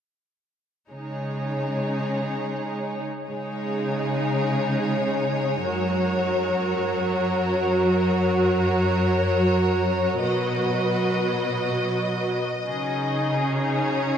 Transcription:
0, 0, Header, 1, 4, 480
1, 0, Start_track
1, 0, Tempo, 796813
1, 545, Time_signature, 3, 2, 24, 8
1, 2940, Tempo, 765306
1, 6300, Tempo, 809717
1, 8635, End_track
2, 0, Start_track
2, 0, Title_t, "Violin section"
2, 0, Program_c, 0, 48
2, 543, Note_on_c, 0, 68, 32
2, 543, Note_on_c, 0, 73, 36
2, 1835, Note_off_c, 0, 68, 0
2, 1835, Note_off_c, 0, 73, 0
2, 1979, Note_on_c, 0, 73, 40
2, 1982, Note_on_c, 0, 68, 39
2, 3401, Note_off_c, 0, 68, 0
2, 3424, Note_on_c, 0, 70, 42
2, 4836, Note_off_c, 0, 73, 0
2, 4863, Note_on_c, 0, 73, 50
2, 6272, Note_off_c, 0, 70, 0
2, 6273, Note_off_c, 0, 73, 0
2, 6299, Note_on_c, 0, 75, 36
2, 6300, Note_on_c, 0, 71, 35
2, 7619, Note_off_c, 0, 71, 0
2, 7742, Note_on_c, 0, 68, 40
2, 8227, Note_on_c, 0, 73, 48
2, 8228, Note_off_c, 0, 75, 0
2, 8635, Note_off_c, 0, 68, 0
2, 8635, Note_off_c, 0, 73, 0
2, 8635, End_track
3, 0, Start_track
3, 0, Title_t, "Viola section"
3, 0, Program_c, 1, 48
3, 541, Note_on_c, 1, 56, 36
3, 542, Note_on_c, 1, 63, 34
3, 1834, Note_off_c, 1, 56, 0
3, 1835, Note_off_c, 1, 63, 0
3, 1981, Note_on_c, 1, 56, 37
3, 1982, Note_on_c, 1, 63, 39
3, 3401, Note_off_c, 1, 56, 0
3, 3402, Note_off_c, 1, 63, 0
3, 3423, Note_on_c, 1, 66, 44
3, 3424, Note_on_c, 1, 54, 48
3, 6272, Note_off_c, 1, 66, 0
3, 6295, Note_off_c, 1, 54, 0
3, 6302, Note_on_c, 1, 54, 35
3, 6302, Note_on_c, 1, 66, 34
3, 7596, Note_off_c, 1, 54, 0
3, 7596, Note_off_c, 1, 66, 0
3, 7741, Note_on_c, 1, 61, 41
3, 7741, Note_on_c, 1, 63, 37
3, 8635, Note_off_c, 1, 61, 0
3, 8635, Note_off_c, 1, 63, 0
3, 8635, End_track
4, 0, Start_track
4, 0, Title_t, "Cello section"
4, 0, Program_c, 2, 48
4, 544, Note_on_c, 2, 49, 36
4, 1836, Note_off_c, 2, 49, 0
4, 1982, Note_on_c, 2, 49, 41
4, 3401, Note_off_c, 2, 49, 0
4, 3424, Note_on_c, 2, 42, 53
4, 6272, Note_off_c, 2, 42, 0
4, 6299, Note_on_c, 2, 47, 42
4, 7618, Note_off_c, 2, 47, 0
4, 7736, Note_on_c, 2, 49, 45
4, 8635, Note_off_c, 2, 49, 0
4, 8635, End_track
0, 0, End_of_file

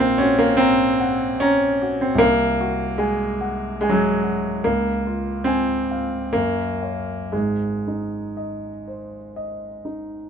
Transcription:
0, 0, Header, 1, 2, 480
1, 0, Start_track
1, 0, Tempo, 792602
1, 1337, Time_signature, 3, 2, 24, 8
1, 1815, Tempo, 825309
1, 3255, Tempo, 879765
1, 3735, Tempo, 1008403
1, 4695, Tempo, 981997
1, 5636, End_track
2, 0, Start_track
2, 0, Title_t, "Grand piano"
2, 0, Program_c, 0, 0
2, 0, Note_on_c, 0, 34, 73
2, 0, Note_on_c, 0, 60, 112
2, 7, Control_c, 0, 64, 127
2, 110, Note_on_c, 0, 61, 115
2, 122, Note_off_c, 0, 60, 0
2, 126, Note_on_c, 0, 66, 63
2, 233, Note_on_c, 0, 58, 105
2, 237, Note_off_c, 0, 61, 0
2, 344, Note_on_c, 0, 60, 121
2, 360, Note_off_c, 0, 58, 0
2, 363, Note_on_c, 0, 82, 71
2, 510, Note_off_c, 0, 66, 0
2, 606, Note_on_c, 0, 78, 70
2, 753, Note_off_c, 0, 82, 0
2, 842, Note_off_c, 0, 60, 0
2, 849, Note_on_c, 0, 61, 123
2, 860, Note_on_c, 0, 82, 74
2, 998, Note_off_c, 0, 78, 0
2, 1102, Note_on_c, 0, 66, 61
2, 1215, Note_off_c, 0, 61, 0
2, 1219, Note_on_c, 0, 60, 91
2, 1245, Note_off_c, 0, 82, 0
2, 1290, Note_off_c, 0, 34, 0
2, 1301, Note_on_c, 0, 36, 74
2, 1323, Note_on_c, 0, 58, 120
2, 1337, Note_off_c, 0, 60, 0
2, 1339, Note_off_c, 0, 66, 0
2, 1348, Control_c, 0, 64, 0
2, 1428, Control_c, 0, 64, 127
2, 1579, Note_on_c, 0, 66, 62
2, 1803, Note_on_c, 0, 56, 96
2, 1808, Note_off_c, 0, 58, 0
2, 1815, Note_on_c, 0, 80, 65
2, 1957, Note_off_c, 0, 66, 0
2, 2054, Note_on_c, 0, 78, 63
2, 2192, Note_off_c, 0, 80, 0
2, 2278, Note_off_c, 0, 56, 0
2, 2287, Note_on_c, 0, 56, 106
2, 2301, Note_on_c, 0, 80, 66
2, 2328, Note_off_c, 0, 56, 0
2, 2337, Note_on_c, 0, 54, 96
2, 2360, Note_on_c, 0, 56, 99
2, 2373, Note_off_c, 0, 54, 0
2, 2438, Note_off_c, 0, 78, 0
2, 2534, Note_on_c, 0, 66, 52
2, 2684, Note_off_c, 0, 80, 0
2, 2734, Note_off_c, 0, 36, 0
2, 2770, Note_off_c, 0, 56, 0
2, 2771, Note_on_c, 0, 58, 96
2, 2775, Note_off_c, 0, 66, 0
2, 2783, Note_on_c, 0, 37, 69
2, 2785, Control_c, 0, 64, 0
2, 2892, Control_c, 0, 64, 127
2, 3017, Note_on_c, 0, 65, 54
2, 3238, Note_on_c, 0, 60, 105
2, 3253, Note_on_c, 0, 80, 62
2, 3254, Note_off_c, 0, 58, 0
2, 3396, Note_off_c, 0, 65, 0
2, 3495, Note_on_c, 0, 77, 58
2, 3634, Note_off_c, 0, 80, 0
2, 3718, Note_off_c, 0, 37, 0
2, 3721, Note_on_c, 0, 58, 96
2, 3727, Note_off_c, 0, 60, 0
2, 3735, Note_on_c, 0, 42, 67
2, 3738, Note_off_c, 0, 77, 0
2, 3743, Control_c, 0, 64, 0
2, 3825, Control_c, 0, 64, 127
2, 3960, Note_on_c, 0, 77, 50
2, 3964, Note_on_c, 0, 73, 45
2, 4186, Note_off_c, 0, 77, 0
2, 4188, Note_off_c, 0, 73, 0
2, 4192, Note_off_c, 0, 42, 0
2, 4196, Note_on_c, 0, 56, 82
2, 4200, Note_off_c, 0, 58, 0
2, 4202, Note_on_c, 0, 32, 50
2, 4208, Note_on_c, 0, 44, 57
2, 4216, Control_c, 0, 64, 0
2, 4297, Control_c, 0, 64, 127
2, 4460, Note_on_c, 0, 63, 50
2, 4695, Note_on_c, 0, 75, 53
2, 4844, Note_off_c, 0, 63, 0
2, 4943, Note_on_c, 0, 72, 47
2, 5081, Note_off_c, 0, 75, 0
2, 5181, Note_on_c, 0, 75, 51
2, 5326, Note_off_c, 0, 72, 0
2, 5417, Note_off_c, 0, 56, 0
2, 5418, Note_on_c, 0, 63, 44
2, 5567, Note_off_c, 0, 75, 0
2, 5632, Note_off_c, 0, 32, 0
2, 5635, Note_off_c, 0, 44, 0
2, 5636, Note_off_c, 0, 63, 0
2, 5636, End_track
0, 0, End_of_file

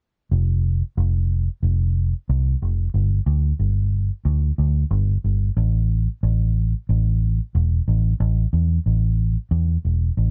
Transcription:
0, 0, Header, 1, 2, 480
1, 0, Start_track
1, 0, Tempo, 657174
1, 234, Time_signature, 4, 2, 24, 8
1, 7528, End_track
2, 0, Start_track
2, 0, Title_t, "Fingered electric bass"
2, 0, Program_c, 0, 33
2, 230, Note_on_c, 0, 29, 80
2, 595, Note_off_c, 0, 29, 0
2, 711, Note_on_c, 0, 29, 78
2, 1076, Note_off_c, 0, 29, 0
2, 1187, Note_on_c, 0, 29, 78
2, 1553, Note_off_c, 0, 29, 0
2, 1676, Note_on_c, 0, 36, 82
2, 1856, Note_off_c, 0, 36, 0
2, 1915, Note_on_c, 0, 29, 78
2, 2095, Note_off_c, 0, 29, 0
2, 2148, Note_on_c, 0, 31, 79
2, 2331, Note_off_c, 0, 31, 0
2, 2384, Note_on_c, 0, 38, 80
2, 2569, Note_off_c, 0, 38, 0
2, 2625, Note_on_c, 0, 31, 75
2, 2991, Note_off_c, 0, 31, 0
2, 3106, Note_on_c, 0, 38, 81
2, 3290, Note_off_c, 0, 38, 0
2, 3347, Note_on_c, 0, 38, 79
2, 3531, Note_off_c, 0, 38, 0
2, 3584, Note_on_c, 0, 31, 82
2, 3768, Note_off_c, 0, 31, 0
2, 3829, Note_on_c, 0, 31, 76
2, 4012, Note_off_c, 0, 31, 0
2, 4066, Note_on_c, 0, 33, 88
2, 4432, Note_off_c, 0, 33, 0
2, 4550, Note_on_c, 0, 33, 79
2, 4914, Note_off_c, 0, 33, 0
2, 5033, Note_on_c, 0, 33, 83
2, 5396, Note_off_c, 0, 33, 0
2, 5512, Note_on_c, 0, 28, 84
2, 5694, Note_off_c, 0, 28, 0
2, 5753, Note_on_c, 0, 33, 77
2, 5935, Note_off_c, 0, 33, 0
2, 5990, Note_on_c, 0, 33, 87
2, 6173, Note_off_c, 0, 33, 0
2, 6230, Note_on_c, 0, 40, 77
2, 6412, Note_off_c, 0, 40, 0
2, 6471, Note_on_c, 0, 33, 76
2, 6836, Note_off_c, 0, 33, 0
2, 6947, Note_on_c, 0, 40, 80
2, 7131, Note_off_c, 0, 40, 0
2, 7192, Note_on_c, 0, 28, 78
2, 7374, Note_off_c, 0, 28, 0
2, 7430, Note_on_c, 0, 33, 78
2, 7528, Note_off_c, 0, 33, 0
2, 7528, End_track
0, 0, End_of_file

